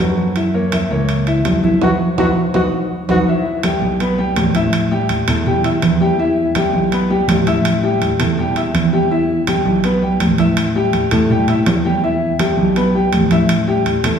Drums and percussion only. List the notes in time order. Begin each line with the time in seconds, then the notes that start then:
0.00 high conga
0.36 high conga, high timbale
0.54 high conga
0.72 high conga, high timbale
0.91 high conga
1.09 high conga, high timbale
1.27 high conga, high timbale
1.45 high conga, high timbale, low timbale
1.64 high conga
1.81 high conga, high timbale
2.18 high conga, high timbale
2.54 high conga, high timbale
3.09 high conga, high timbale
3.28 high conga
3.46 high conga
3.63 high conga, high timbale
3.82 high conga
4.00 high conga, high timbale
4.18 high conga
4.36 high conga, high timbale, low timbale
4.55 high conga, high timbale
4.73 high conga, high timbale
4.92 high conga
5.09 high conga, high timbale
5.28 high conga, low conga, high timbale
5.47 high conga, low conga
5.64 high conga, high timbale
5.82 high conga, high timbale
6.01 high conga
6.19 high conga
6.37 high conga
6.55 high conga, high timbale
6.74 high conga
6.92 high conga, high timbale
7.10 high conga
7.28 high conga, high timbale, low timbale
7.46 high conga, high timbale
7.65 high conga, high timbale
7.83 high conga
8.02 high conga, high timbale
8.20 high conga, low conga, high timbale
8.38 high conga
8.56 high conga, high timbale
8.75 high conga, high timbale
8.93 high conga
9.12 high conga
9.30 high conga
9.47 high conga, high timbale
9.66 high conga
9.84 high conga, high timbale
10.03 high conga
10.20 high conga, high timbale
10.38 high conga, high timbale
10.57 high conga, high timbale
10.76 high conga
10.93 high conga, high timbale
11.11 high conga, low conga, high timbale
11.30 high conga, low conga
11.48 high conga, high timbale
11.66 high conga, high timbale, low timbale
11.85 high conga
12.04 high conga
12.22 high conga
12.39 high conga, high timbale
12.58 high conga
12.76 high conga, high timbale
12.95 high conga
13.13 high conga, high timbale
13.31 high conga, high timbale
13.49 high conga, high timbale
13.68 high conga
13.86 high conga, high timbale
14.04 high conga, low conga, high timbale